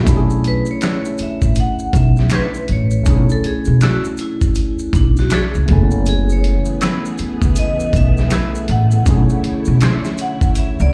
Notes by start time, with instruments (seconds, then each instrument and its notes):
0.04 upright bass B1, tine electric piano A3 C#4 D4, kick, closed hi-hat, maracas
0.09 tine electric piano E4 G4
0.17 tine electric piano G#4
0.30 maracas
0.44 vibraphone B4, closed hi-hat
0.66 maracas
0.71 vibraphone C#5
0.81 hollow-body jazz guitar D4 E4 A4 C#5, finger snap, snare, closed hi-hat, maracas
1.05 maracas
1.18 muted upright bass stroke, closed hi-hat, maracas
1.23 vibraphone E5
1.42 upright bass A1, kick, maracas
1.55 closed hi-hat, maracas
1.60 vibraphone F#5
1.79 maracas
1.93 upright bass B1, vibraphone E5, kick, closed hi-hat, maracas
2.17 snare, maracas
2.30 hollow-body jazz guitar D4, finger snap, snare, closed hi-hat, maracas
2.34 hollow-body jazz guitar E4 A4 C#5, vibraphone B4
2.54 maracas
2.68 upright bass A1, closed hi-hat
2.72 vibraphone C#5
2.91 maracas
3.03 upright bass B1, tine electric piano A3 C#4 D4, kick, closed hi-hat, maracas
3.09 tine electric piano E4 G#4
3.29 vibraphone A4, maracas
3.44 vibraphone G#4, muted upright bass stroke, closed hi-hat
3.65 upright bass B2, maracas
3.81 hollow-body jazz guitar D4 E4 A4 C#5, vibraphone F#4, finger snap, snare, closed hi-hat, maracas
4.05 maracas
4.17 vibraphone E4, closed hi-hat, maracas
4.41 kick, maracas
4.55 closed hi-hat, maracas
4.79 maracas
4.93 upright bass B1, vibraphone D4, kick, closed hi-hat, maracas
5.17 vibraphone F#4, snare, maracas
5.30 hollow-body jazz guitar D4 E4 A4 C#5, vibraphone G#4, finger snap, snare, closed hi-hat, maracas
5.55 upright bass C#2, maracas
5.66 upright bass F#1, tine electric piano A3 B3 C#4, kick, closed hi-hat
5.71 tine electric piano E4 G#5, vibraphone A4
5.91 maracas
6.05 string machine E3 A3 B3 G#4, vibraphone G#4, closed hi-hat, maracas
6.29 vibraphone C#5, maracas
6.44 closed hi-hat
6.65 maracas
6.81 hollow-body jazz guitar A3 E4 G#4 B4, finger snap, snare, closed hi-hat, maracas
7.05 maracas
7.18 muted upright bass stroke, closed hi-hat, maracas
7.42 upright bass C#2, kick, maracas
7.56 vibraphone D#5, closed hi-hat, maracas
7.80 maracas
7.93 upright bass B1, vibraphone E5, kick, closed hi-hat, maracas
8.17 snare, maracas
8.30 hollow-body jazz guitar A3 E4 G#4 B4, finger snap, snare, closed hi-hat, maracas
8.55 maracas
8.68 upright bass A1, vibraphone F#5, closed hi-hat
8.91 maracas
9.04 upright bass B1, string machine D3 E4 C#5, tine electric piano A3 C#4 D4, kick, closed hi-hat, maracas
9.09 tine electric piano E4 G#4
9.30 maracas
9.44 muted upright bass stroke, closed hi-hat
9.65 upright bass B2, maracas
9.81 hollow-body jazz guitar D4 E4 A4 C#5, finger snap, snare, closed hi-hat, maracas
10.05 snare, maracas
10.18 vibraphone F#5, closed hi-hat, maracas
10.41 kick, maracas
10.55 vibraphone E5, closed hi-hat, maracas
10.80 upright bass C#2, vibraphone D5, maracas